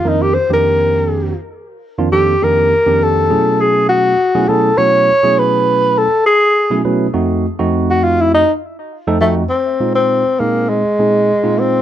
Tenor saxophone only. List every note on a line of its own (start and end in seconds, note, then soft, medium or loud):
0.08 0.24 D#4 medium
0.22 0.36 G4 medium
0.34 0.50 C5 loud
0.54 1.37 A#4 medium
2.12 2.45 G4 loud
2.44 3.05 A#4 loud
3.03 3.62 A4 loud
3.61 3.88 G#4 medium
3.89 4.50 F#4 loud
4.49 4.79 A4 loud
4.78 5.40 C#5 loud
5.39 6.00 B4 loud
5.98 6.26 A4 loud
6.26 6.81 G#4 loud
7.91 8.05 F#4 medium
8.04 8.23 F4 loud
8.21 8.34 E4 medium
8.34 8.52 D#4 loud
9.21 9.34 A3 medium
9.49 9.92 C4 medium
9.95 10.41 C4 medium
10.40 10.71 A#3 medium
10.70 11.61 G#3 medium
11.60 11.82 C4 medium